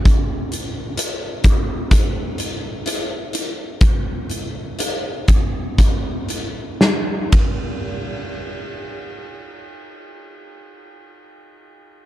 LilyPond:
\new DrumStaff \with { instrumentName = "Drums" } \drummode { \time 4/4 \tempo 4 = 60 <hh bd>8 hh8 hh8 <hh bd>8 <hh bd>8 hh8 hh8 hh8 | <hh bd>8 hh8 hh8 <hh bd>8 <hh bd>8 hh8 sn8 <bd cymr>8 | r4 r4 r4 r4 | }